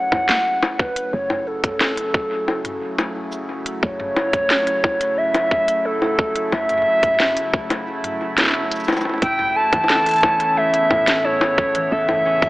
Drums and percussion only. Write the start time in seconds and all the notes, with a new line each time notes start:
0.12 kick, mid tom, high bongo
0.29 snare
0.63 high bongo
0.79 kick
0.96 closed hi-hat
1.30 mid tom, high bongo
1.64 kick, closed hi-hat, mid tom
1.81 snare, high bongo
1.97 closed hi-hat
2.14 kick
2.48 high bongo
2.65 closed hi-hat, mid tom
2.98 closed hi-hat, high bongo
3.32 shaker
3.66 closed hi-hat
3.83 kick
4.00 mid tom
4.16 high bongo
4.33 kick, closed hi-hat, mid tom
4.50 snare
4.67 closed hi-hat
4.84 kick, high bongo
5.01 closed hi-hat
5.34 closed hi-hat, high bongo
5.51 kick, mid tom
5.68 closed hi-hat
6.02 high bongo
6.19 kick
6.36 closed hi-hat
6.52 high bongo
6.69 closed hi-hat, mid tom
6.73 mid tom
6.78 mid tom
6.82 mid tom
7.03 kick, closed hi-hat, mid tom
7.14 mid tom
7.20 snare, high bongo
7.25 mid tom
7.37 closed hi-hat
7.54 kick
7.70 closed hi-hat, high bongo
8.04 closed hi-hat, mid tom
8.38 snare, closed hi-hat, high bongo
8.41 snare
8.43 snare
8.46 snare
8.49 snare
8.52 snare
8.71 closed hi-hat, shaker
8.76 shaker
8.80 shaker
8.84 shaker
8.88 high bongo, shaker
8.93 high bongo, shaker
8.97 high bongo, shaker
9.01 high bongo, shaker
9.05 high bongo
9.09 high bongo
9.14 high bongo
9.18 high bongo
9.22 kick, closed hi-hat
9.39 mid tom
9.73 kick, closed hi-hat, mid tom, high bongo
9.84 high bongo
9.89 snare
9.95 high bongo
10.06 closed hi-hat
10.09 closed hi-hat
10.11 closed hi-hat
10.14 closed hi-hat
10.16 closed hi-hat
10.18 closed hi-hat
10.21 kick, closed hi-hat, high bongo
10.40 closed hi-hat
10.74 closed hi-hat
10.91 kick, mid tom, high bongo
11.07 snare, closed hi-hat
11.41 high bongo
11.58 kick
11.75 closed hi-hat
12.09 mid tom, high bongo
12.42 kick, closed hi-hat, mid tom